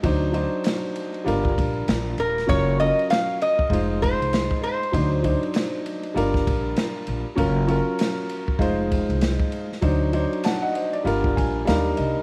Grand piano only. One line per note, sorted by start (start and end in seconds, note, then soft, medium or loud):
0.03 0.31 F#3 medium
0.03 0.31 D4 medium
0.03 0.32 D#4 medium
0.03 0.32 C5 medium
0.32 1.25 F#3 medium
0.32 1.24 D4 medium
0.32 1.26 D#4 medium
0.32 1.26 C5 medium
1.24 2.34 G3 medium
1.24 2.34 D4 medium
1.24 2.35 F4 medium
1.24 2.35 A#4 medium
2.46 2.75 F#3 medium
2.46 2.75 C#4 medium
2.46 2.76 F4 medium
2.46 2.76 A#4 medium
2.78 3.71 F#3 medium
2.78 3.71 C#4 medium
2.78 3.69 F4 medium
2.78 3.72 A#4 medium
3.69 4.79 G#3 medium
3.69 4.79 D#4 medium
3.69 4.80 F4 medium
3.69 4.80 C5 medium
4.92 5.20 F#3 medium
4.92 5.20 D4 medium
4.92 5.21 D#4 medium
4.92 5.21 C5 medium
5.23 6.15 F#3 medium
5.23 6.14 D4 medium
5.23 6.16 D#4 medium
5.23 6.17 C5 medium
6.14 7.24 G3 medium
6.14 7.24 D4 medium
6.14 7.25 F4 medium
6.14 7.25 A#4 loud
7.35 7.64 F#3 medium
7.35 7.65 C#4 medium
7.35 7.65 F4 medium
7.35 7.66 A#4 loud
7.67 8.60 F#3 medium
7.67 8.60 C#4 medium
7.67 8.58 F4 medium
7.67 8.61 A#4 medium
8.59 9.68 G#3 medium
8.59 9.69 D#4 medium
8.59 9.69 F4 medium
8.59 9.69 C5 loud
9.81 10.10 F#3 medium
9.81 10.10 D4 medium
9.81 10.10 D#4 medium
9.81 10.11 C5 medium
10.12 11.05 F#3 medium
10.12 11.03 D4 medium
10.12 11.06 D#4 medium
10.12 10.45 C5 medium
10.44 10.60 F#5 medium
10.44 10.62 A5 medium
10.62 10.73 D#5 medium
10.62 10.74 F#5 medium
10.75 10.92 C5 medium
10.75 10.92 D#5 medium
10.93 11.22 D5 medium
11.04 11.59 G3 medium
11.04 11.60 D4 medium
11.04 11.60 F4 medium
11.04 11.61 A#4 medium
11.36 11.65 G#5 medium
11.65 12.21 G3 medium
11.65 12.21 D4 medium
11.65 12.22 D#4 medium
11.65 12.22 A#4 loud
11.65 11.96 F5 medium
11.97 12.23 D#5 medium